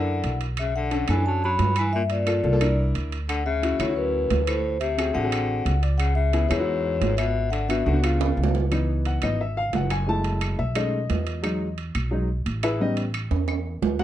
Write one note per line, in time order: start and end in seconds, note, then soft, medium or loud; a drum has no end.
0.00 0.20 F#2 medium
0.00 0.38 D3 medium
0.00 0.44 D4 medium
0.00 0.44 E4 medium
0.00 0.45 A#4 medium
0.00 0.37 F#5 medium
0.24 1.03 B1 medium
0.24 high timbale medium
0.41 high timbale medium
0.57 0.74 C#3 medium
0.57 0.76 E5 loud
0.57 high timbale medium
0.57 claves medium
0.76 1.07 D3 medium
0.76 1.07 F#5 loud
0.91 1.03 C#4 medium
0.91 1.03 D4 medium
0.91 1.03 A4 loud
0.91 high timbale medium
1.08 1.56 F#2 medium
1.08 1.25 E3 medium
1.08 1.14 C#4 medium
1.08 1.14 D4 medium
1.08 1.15 A4 medium
1.08 1.27 G#5 loud
1.08 high timbale medium
1.08 claves medium
1.17 1.64 C#4 medium
1.17 1.64 D4 medium
1.17 1.64 A4 medium
1.26 1.42 F#3 medium
1.26 1.43 A5 medium
1.44 1.75 F#3 medium
1.44 1.78 B5 loud
1.59 2.38 G2 medium
1.59 high timbale medium
1.59 low timbale medium
1.76 1.93 E3 medium
1.76 1.94 G#5 loud
1.76 high timbale loud
1.76 claves medium
1.93 2.02 A#2 medium
1.93 2.01 E5 loud
2.10 2.75 A#2 medium
2.10 2.74 D5 medium
2.10 high timbale medium
2.26 2.39 A#3 medium
2.26 2.39 F4 medium
2.26 2.39 A4 medium
2.26 high timbale medium
2.26 claves medium
2.44 2.91 C2 medium
2.44 2.50 A#3 medium
2.44 2.50 F4 medium
2.44 2.50 A4 medium
2.52 2.61 A#3 medium
2.52 2.61 F4 medium
2.52 2.61 A4 loud
2.61 3.15 D4 medium
2.61 3.15 E4 medium
2.61 3.16 A#4 loud
2.61 high timbale loud
2.61 claves medium
2.95 3.74 D2 medium
2.95 high timbale medium
3.12 high timbale medium
3.29 3.45 D3 medium
3.29 3.45 F#5 loud
3.29 high timbale medium
3.29 claves medium
3.46 3.77 C#3 medium
3.46 3.81 E5 loud
3.62 3.74 C#4 medium
3.62 3.75 E4 medium
3.62 3.75 F#4 medium
3.62 high timbale medium
3.79 4.27 D2 medium
3.79 3.96 A2 medium
3.79 3.86 C#4 medium
3.79 3.86 E4 medium
3.79 3.86 F#4 medium
3.79 3.95 C#5 loud
3.79 high timbale loud
3.79 claves medium
3.88 4.36 C#4 medium
3.88 4.36 E4 medium
3.88 4.36 F#4 medium
3.96 4.44 F#2 medium
3.96 4.49 B4 medium
4.30 5.10 D2 medium
4.30 high timbale medium
4.30 low timbale medium
4.46 4.79 A2 medium
4.46 4.79 C5 medium
4.46 high timbale loud
4.46 claves medium
4.80 5.12 C3 medium
4.80 5.16 E5 loud
4.80 high timbale medium
4.98 5.10 C4 medium
4.98 5.10 F#4 medium
4.98 5.11 G#4 medium
4.98 high timbale medium
4.98 claves medium
5.14 5.63 A1 medium
5.14 5.78 D3 loud
5.14 5.21 C4 medium
5.14 5.21 F#4 medium
5.14 5.22 G#4 medium
5.14 5.79 F#5 loud
5.24 5.71 C4 medium
5.24 5.71 F#4 medium
5.24 5.72 G#4 medium
5.32 high timbale loud
5.32 claves medium
5.66 6.45 C#2 medium
5.66 5.82 F#5 medium
5.66 high timbale medium
5.82 5.99 D5 medium
5.82 high timbale medium
5.98 6.15 C#3 medium
5.98 6.15 F#5 loud
5.98 high timbale medium
5.98 claves medium
6.15 6.48 C#3 medium
6.15 6.48 E5 loud
6.33 6.46 B3 medium
6.33 6.46 E4 medium
6.33 6.46 G#4 medium
6.33 high timbale medium
6.49 6.98 E2 loud
6.49 7.14 G#2 medium
6.49 6.57 B3 medium
6.49 6.57 E4 medium
6.49 6.57 G#4 medium
6.49 7.14 C#5 loud
6.49 high timbale medium
6.49 claves medium
6.59 7.07 B3 medium
6.59 7.07 E4 medium
6.59 7.07 F#4 medium
7.01 7.81 G#1 medium
7.01 high timbale medium
7.01 low timbale medium
7.17 7.50 B2 medium
7.17 7.50 E5 medium
7.17 high timbale medium
7.17 claves medium
7.50 7.68 D3 medium
7.50 7.69 F#5 loud
7.50 high timbale medium
7.69 7.85 B2 medium
7.69 7.81 B3 medium
7.69 7.82 D4 medium
7.69 7.82 F#4 medium
7.69 7.87 E5 medium
7.69 high timbale medium
7.69 claves medium
7.85 8.34 C#2 loud
7.85 8.01 D3 medium
7.85 7.92 B3 medium
7.85 7.92 D4 medium
7.85 7.92 F#4 medium
7.85 8.03 F#5 medium
7.93 8.01 B3 medium
7.93 8.01 D4 medium
7.93 8.03 F#4 medium
8.02 8.50 C#3 medium
8.02 8.58 B3 medium
8.02 8.58 D4 medium
8.02 8.58 F4 medium
8.02 8.52 F5 medium
8.02 high timbale loud
8.02 claves medium
8.21 high timbale loud
8.37 9.17 C#2 medium
8.44 low timbale loud
8.55 low timbale medium
8.71 9.20 E3 medium
8.71 9.20 B3 soft
8.71 9.21 D#4 medium
8.71 high timbale medium
8.71 claves medium
9.05 9.23 F#5 medium
9.05 high timbale medium
9.22 9.71 G#1 medium
9.22 9.38 E3 soft
9.22 9.38 B3 soft
9.22 9.39 D#4 medium
9.22 9.40 D#5 medium
9.22 high timbale medium
9.22 claves medium
9.41 9.57 E5 medium
9.57 9.74 F5 medium
9.73 10.53 F#1 medium
9.73 9.91 F#5 medium
9.73 high timbale medium
9.73 low timbale medium
9.90 10.08 G#5 medium
9.90 high timbale medium
9.90 claves medium
10.07 10.56 G#3 medium
10.07 10.57 A3 soft
10.07 10.57 E4 medium
10.07 10.56 A5 medium
10.24 high timbale medium
10.41 high timbale medium
10.41 claves medium
10.59 11.07 B1 medium
10.59 10.76 E5 medium
10.75 10.99 G#3 medium
10.75 10.99 A3 medium
10.75 10.99 C#4 soft
10.75 10.99 D#4 medium
10.75 11.74 D#5 medium
10.75 high timbale loud
10.75 claves medium
11.10 11.90 E2 medium
11.10 high timbale medium
11.10 low timbale medium
11.27 high timbale medium
11.42 11.66 F#3 medium
11.42 11.66 G#3 soft
11.42 11.67 D#4 medium
11.42 high timbale medium
11.42 claves medium
11.78 high timbale medium
11.95 12.43 B1 medium
11.95 high timbale medium
11.95 claves medium
12.11 12.27 F#3 soft
12.11 12.27 G#3 soft
12.11 12.27 D#4 medium
12.46 13.26 A1 medium
12.46 high timbale medium
12.63 12.80 E4 medium
12.63 12.80 G#4 medium
12.63 12.80 B4 medium
12.63 12.80 E5 medium
12.63 high timbale loud
12.63 claves medium
12.80 13.03 G3 medium
12.80 13.04 B3 medium
12.80 13.04 C#4 medium
12.80 12.98 D#4 medium
12.80 12.98 D#5 medium
12.97 high timbale medium
13.14 high timbale medium
13.14 claves medium
13.31 13.79 E2 medium
13.31 high timbale medium
13.48 high timbale medium
13.48 claves medium
13.82 14.04 D2 medium
13.82 low timbale loud
13.99 14.04 F#4 medium
13.99 14.04 F#5 loud
13.99 low timbale medium